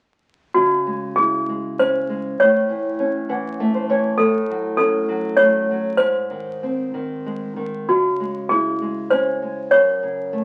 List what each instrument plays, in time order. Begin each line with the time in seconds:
0.54 nylon-string guitar C#3, toy piano F#4
0.87 nylon-string guitar G#3
1.16 nylon-string guitar E4, toy piano G#4
1.49 nylon-string guitar G#3
1.79 nylon-string guitar C#4, toy piano C5
2.09 nylon-string guitar G#3
2.40 nylon-string guitar A2, toy piano C#5
2.69 nylon-string guitar E3
3.00 nylon-string guitar C#4
3.29 nylon-string guitar E3 F#5
3.60 nylon-string guitar A3 E5
3.75 nylon-string guitar C5
3.89 nylon-string guitar E3 C#5
4.18 nylon-string guitar A2, toy piano A4
4.50 nylon-string guitar F#3
4.77 nylon-string guitar C#4, toy piano A4
5.09 nylon-string guitar F#3
5.37 nylon-string guitar A3, toy piano C#5
5.71 nylon-string guitar F#3
5.97 nylon-string guitar G#2, toy piano C5
6.30 nylon-string guitar D#3
6.63 nylon-string guitar C4
6.94 nylon-string guitar D#3
7.26 nylon-string guitar G#3
7.56 nylon-string guitar D#3
7.89 nylon-string guitar C#3, toy piano F#4
8.20 nylon-string guitar G#3
8.49 nylon-string guitar E4, toy piano G#4
8.82 nylon-string guitar G#3
9.10 nylon-string guitar C#4, toy piano C5
9.42 nylon-string guitar G#3
9.71 nylon-string guitar F#2, toy piano C#5
10.03 nylon-string guitar C#3
10.33 nylon-string guitar A3